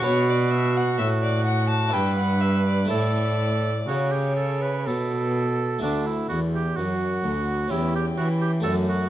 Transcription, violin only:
0.05 0.31 C#5 loud
0.29 0.52 D5 medium
0.51 0.78 E5 medium
0.76 0.98 F#5 medium
0.98 1.06 E5 medium
1.23 1.45 D5 medium
1.46 1.69 F#5 loud
1.70 1.95 A5 medium
1.93 2.17 G5 medium
2.18 2.42 F#5 medium
2.40 2.65 E5 medium
2.65 2.90 D5 medium
2.90 3.89 D5 medium
3.88 5.35 C#5 medium
6.78 7.73 F#5 medium
7.72 8.66 G5 medium
8.65 9.09 F#5 medium

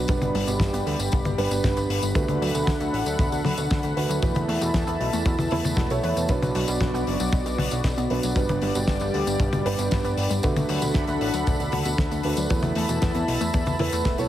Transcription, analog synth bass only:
0.09 0.19 G1 loud
0.22 0.32 G1 medium
0.35 0.45 G1 medium
0.47 0.58 G1 medium
0.60 0.70 G1 loud
0.73 0.84 G1 medium
0.86 0.96 D2 medium
0.99 1.09 G1 medium
1.13 1.23 G1 loud
1.25 1.35 G1 medium
1.38 1.48 G1 medium
1.51 1.61 G1 medium
1.64 1.74 G1 loud
1.77 1.87 G1 medium
1.90 2.00 G1 loud
2.03 2.13 G1 medium
2.15 2.26 D2 loud
2.29 2.39 D2 medium
2.41 2.52 D2 loud
2.54 2.65 D2 medium
2.67 2.77 D2 loud
2.80 2.90 D2 medium
2.93 3.03 A1 medium
3.06 3.16 D2 medium
3.19 3.29 D2 loud
3.32 3.42 D2 medium
3.45 3.55 D2 medium
3.58 3.68 D2 medium
3.71 3.81 D2 loud
3.84 3.94 D2 medium
3.97 4.07 D2 loud
4.10 4.20 D2 medium
4.23 4.33 E2 loud
4.35 4.46 E2 medium
4.48 4.59 E2 medium
4.61 4.71 E2 medium
4.74 4.84 E2 loud
4.87 4.97 E2 medium
5.00 5.10 B1 medium
5.13 5.23 E2 medium
5.26 5.36 E2 loud
5.39 5.49 E2 medium
5.52 5.62 E2 loud
5.65 5.75 E2 medium
5.77 5.87 E1 loud
5.91 6.01 B1 medium
6.04 6.14 E2 medium
6.17 6.27 E2 medium
6.29 6.39 B1 loud
6.42 6.53 B1 medium
6.55 6.65 B1 loud
6.68 6.78 B1 medium
6.81 6.91 B1 loud
6.94 7.04 B1 medium
7.07 7.17 F#1 loud
7.20 7.30 B1 medium
7.33 7.43 B1 loud
7.46 7.56 B1 medium
7.59 7.69 B1 medium
7.72 7.82 B1 medium
7.84 7.95 B1 loud
7.98 8.08 B1 medium
8.11 8.21 B1 loud
8.24 8.34 B1 medium
8.36 8.46 G1 loud
8.49 8.59 G1 medium
8.62 8.72 G1 medium
8.75 8.85 G1 medium
8.88 8.98 G1 loud
9.01 9.11 G1 medium
9.14 9.24 D2 medium
9.27 9.37 G1 medium
9.40 9.50 G1 loud
9.53 9.63 G1 medium
9.66 9.76 G1 loud
9.79 9.89 G1 medium
9.92 10.02 G1 loud
10.05 10.15 G1 medium
10.17 10.28 G1 loud
10.30 10.40 G1 medium
10.44 10.54 D2 loud
10.56 10.66 D2 medium
10.69 10.79 D2 loud
10.82 10.92 D2 medium
10.95 11.05 D2 loud
11.08 11.18 D2 medium
11.21 11.31 A1 medium
11.34 11.44 D2 medium
11.47 11.57 D2 loud
11.60 11.70 D2 medium
11.73 11.83 D2 medium
11.86 11.96 D2 medium
11.98 12.08 D2 loud
12.11 12.21 D2 medium
12.24 12.34 D2 loud
12.37 12.47 D2 medium
12.51 12.60 E2 loud
12.63 12.73 E2 medium
12.76 12.86 E2 loud
12.89 12.99 E2 medium
13.03 13.12 E2 loud
13.15 13.25 E2 medium
13.28 13.38 B1 medium
13.41 13.51 E2 medium
13.54 13.64 E2 loud
13.67 13.77 E2 medium
13.80 13.90 E2 medium
13.93 14.03 E2 medium
14.05 14.15 E1 loud
14.18 14.28 B1 medium

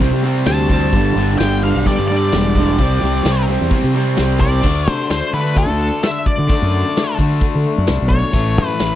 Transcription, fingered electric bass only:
0.00 0.10 C2 loud
0.11 0.43 C3 medium
0.46 0.89 D2 medium
0.94 1.14 G1 medium
1.16 1.37 G1 medium
1.40 1.71 G1 medium
1.75 1.86 B1 medium
1.99 2.30 G2 loud
2.33 2.75 E1 loud
2.79 3.00 C2 medium
3.03 3.24 C2 medium
3.25 3.57 C2 medium
3.61 3.71 E2 medium
3.84 4.15 C3 loud
4.19 4.61 C2 loud
4.64 4.88 D2 medium
4.88 4.98 C3 medium
5.10 5.21 D2 medium
5.33 5.54 D3 medium
5.56 5.67 D2 loud
5.69 5.90 D2 medium
6.39 6.49 D3 medium
6.62 6.83 F#2 loud
7.19 7.40 D3 medium
7.55 7.65 D3 medium
7.78 7.88 F#2 loud
7.89 7.99 C2 loud
8.02 8.22 B1 medium
8.34 8.58 A1 medium
8.58 8.68 F#2 medium
8.80 8.90 A1 medium

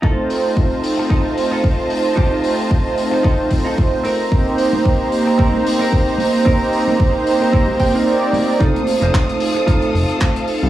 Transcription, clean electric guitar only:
0.02 0.50 D#4 medium
0.02 0.51 F4 medium
0.02 0.51 A4 loud
0.98 muted clean electric guitar stroke medium
1.10 1.25 D#4 medium
1.10 1.25 F4 medium
1.10 1.26 A4 medium
1.36 muted clean electric guitar stroke soft
1.51 1.64 D#4 medium
1.51 1.64 F4 medium
1.51 1.65 A4 medium
1.78 muted clean electric guitar stroke soft
1.90 muted clean electric guitar stroke soft
2.16 2.64 D#4 medium
2.16 2.65 F4 medium
2.16 2.65 G4 loud
3.11 muted clean electric guitar stroke medium
3.23 3.39 D#4 medium
3.23 3.39 F4 medium
3.23 3.40 A4 medium
3.50 muted clean electric guitar stroke soft
3.65 3.78 D#4 medium
3.65 3.78 F4 medium
3.65 3.79 A4 medium
3.92 muted clean electric guitar stroke soft
4.04 4.91 C4 medium
4.04 4.91 D#4 medium
4.04 4.92 A#4 medium
5.26 muted clean electric guitar stroke medium
5.38 5.53 C4 medium
5.38 5.54 D#4 medium
5.38 5.54 A#4 medium
5.65 muted clean electric guitar stroke soft
5.79 5.92 C4 medium
5.79 5.93 D#4 medium
5.79 5.93 A#4 loud
6.07 muted clean electric guitar stroke soft
6.19 muted clean electric guitar stroke soft
6.45 6.93 C4 loud
6.45 6.94 D#4 medium
6.45 6.94 A#4 loud
7.40 muted clean electric guitar stroke medium
7.52 7.68 C4 medium
7.52 7.68 D#4 medium
7.52 7.69 A#4 medium
7.79 8.05 G5 medium
7.79 muted clean electric guitar stroke soft
7.94 8.06 C4 medium
7.94 8.07 D#4 medium
7.94 8.07 A#4 medium
8.07 8.57 C5 medium
8.21 muted clean electric guitar stroke soft
8.33 muted clean electric guitar stroke soft
8.60 8.81 D#4 loud
8.60 8.81 F4 medium
8.60 8.82 A4 loud
9.01 9.21 D#4 medium
9.01 9.22 F4 medium
9.01 9.22 C5 medium
9.41 muted clean electric guitar stroke soft
9.55 muted clean electric guitar stroke medium
9.67 10.15 D#4 medium
9.67 10.15 F4 medium
9.67 10.16 A4 medium
10.62 muted clean electric guitar stroke soft

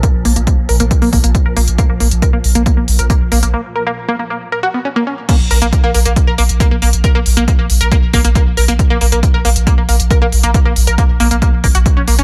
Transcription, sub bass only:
0.14 0.24 A#1 medium
0.25 0.35 A#1 loud
0.36 0.47 A#1 medium
0.58 0.68 A#1 medium
0.69 0.79 A#1 loud
0.80 0.91 A#1 medium
1.02 1.12 A#1 medium
1.13 1.23 A#1 loud
1.24 1.34 A#1 medium
1.46 1.56 A#1 medium
1.56 1.67 A#1 loud
1.67 1.78 A#1 medium
1.89 2.00 A#1 medium
2.00 2.11 A#1 loud
2.11 2.22 A#1 medium
2.33 2.43 A#1 medium
2.44 2.54 A#1 loud
2.55 2.66 A#1 medium
2.77 2.87 A#1 medium
2.88 2.98 A#1 loud
2.99 3.10 A#1 medium
3.21 3.31 A#1 medium
3.32 3.42 A#1 loud
3.43 3.53 A#1 medium
5.40 5.50 A#1 medium
5.51 5.61 A#1 loud
5.62 5.72 A#1 medium
5.83 5.94 A#1 medium
5.94 6.05 A#1 loud
6.05 6.16 A#1 medium
6.27 6.38 A#1 medium
6.38 6.49 A#1 loud
6.49 6.60 A#1 medium
6.71 6.81 A#1 medium
6.82 6.92 A#1 loud
6.93 7.04 A#1 medium
7.15 7.25 A#1 medium
7.26 7.36 A#1 loud
7.37 7.48 A#1 medium
7.59 7.69 A#1 medium
7.70 7.80 A#1 loud
7.81 7.91 A#1 medium
8.03 8.13 A#1 medium
8.13 8.24 A#1 loud
8.24 8.35 A#1 medium
8.46 8.57 A#1 medium
8.57 8.68 A#1 loud
8.68 8.79 A#1 medium
8.90 9.00 A#1 medium
9.01 9.11 A#1 loud
9.12 9.23 A#1 medium
9.34 9.44 A#1 medium
9.45 9.55 A#1 loud
9.56 9.66 A#1 medium
9.78 9.88 A#1 medium
9.89 9.99 A#1 loud
10.00 10.10 A#1 medium
10.22 10.32 A#1 medium
10.32 10.43 A#1 loud
10.43 10.54 A#1 medium
10.65 10.76 A#1 medium
10.76 10.87 A#1 loud
10.87 10.98 A#1 medium
11.09 11.19 A#1 medium
11.20 11.30 A#1 loud
11.31 11.42 A#1 medium
11.53 11.63 A#1 medium
11.64 11.74 A#1 loud
11.75 11.85 A#1 medium
11.97 12.07 A#1 medium
12.08 12.18 A#1 loud
12.19 12.24 A#1 medium

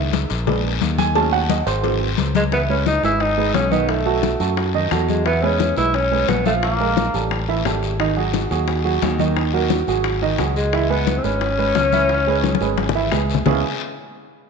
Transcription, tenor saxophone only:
2.36 2.44 G#3 medium
2.53 2.60 B3 medium
2.70 2.86 C#4 medium
2.87 3.03 D#4 loud
3.04 3.23 E4 medium
3.21 3.54 D#4 loud
3.55 3.74 C#4 medium
3.72 3.91 B3 medium
3.89 4.58 A3 medium
5.09 5.25 G#3 medium
5.26 5.44 B3 loud
5.42 5.77 C#4 medium
5.77 5.96 E4 loud
5.95 6.30 C#4 loud
6.29 6.45 B3 medium
6.46 6.54 A3 medium
6.63 7.27 A#3 medium
10.57 10.92 G#3 medium
10.90 11.19 B3 loud
11.18 11.25 C4 medium
11.24 13.12 C#4 loud

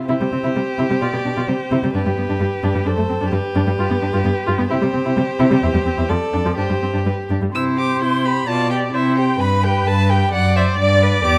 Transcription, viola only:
0.09 0.14 E4 medium
0.21 0.25 G3 soft
0.32 0.37 C4 soft
0.44 0.48 E4 soft
0.56 0.60 G3 soft
0.78 0.83 E4 soft
0.90 0.94 G3 soft
1.01 1.06 F4 medium
1.13 1.18 B3 soft
1.25 1.29 D4 soft
1.36 1.41 F4 soft
1.48 1.53 G3 soft
1.72 1.76 E4 soft
1.83 1.88 G3 soft
1.94 1.99 D4 medium
2.06 2.10 G3 soft
2.18 2.22 B3 soft
2.29 2.34 D4 soft
2.40 2.45 G3 soft
2.63 2.68 D4 medium
2.75 2.79 G3 medium
2.86 2.90 D4 medium
2.97 3.02 A3 soft
3.09 3.14 C4 soft
3.21 3.25 D4 medium
3.32 3.36 G3 soft
3.55 3.60 D4 medium
3.67 3.72 G3 soft
3.79 3.83 F4 medium
3.90 3.95 B3 soft
4.02 4.06 D4 soft
4.13 4.18 F4 soft
4.24 4.29 B3 soft
4.47 4.52 F4 medium
4.58 4.63 B3 medium
4.70 4.75 E4 medium
4.81 4.86 G3 soft
4.93 4.98 C4 soft
5.05 5.09 E4 medium
5.16 5.21 G3 soft
5.39 5.44 E4 medium
5.50 5.55 G3 medium
5.63 5.67 E4 medium
5.74 5.79 G3 soft
5.85 5.90 C4 soft
5.97 6.02 E4 medium
6.09 6.14 F3 soft
6.33 6.38 D4 soft
6.45 6.50 F3 soft
6.57 6.62 D4 medium
6.70 6.74 G3 soft
6.82 6.87 C4 soft
6.93 6.98 D4 soft
7.06 7.11 G3 soft
7.30 7.35 D4 soft
7.42 7.47 G3 soft
7.53 8.43 C5 medium
8.48 8.95 D5 soft
8.94 9.40 C5 soft
9.40 10.31 B4 medium
10.33 11.38 D5 medium

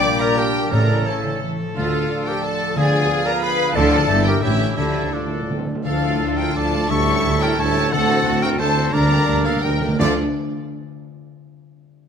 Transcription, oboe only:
0.00 0.20 D5 loud
0.21 0.28 A#4 loud
0.38 0.70 G4 medium
0.71 1.08 A#4 loud
1.07 1.42 A4 medium
1.77 2.29 F4 loud
2.28 2.43 G4 medium
2.44 2.79 A4 loud
2.77 3.27 G#4 loud
3.26 3.44 A#4 loud
3.42 3.75 B4 loud
3.76 4.25 A4 loud
4.27 4.35 G4 medium
4.44 4.77 E4 medium
4.77 5.15 E4 loud
5.14 5.50 D4 medium
5.85 6.39 A4 loud
6.38 6.55 A#4 medium
6.56 6.92 D5 loud
6.91 7.44 E5 loud
7.43 7.59 A#4 loud
7.59 7.94 C#5 loud
7.93 8.44 A4 loud
8.43 8.59 A#4 loud
8.59 8.95 C5 loud
8.94 9.47 D5 loud
9.46 9.63 A4 loud
9.64 9.99 A#4 medium
9.99 10.14 D5 loud

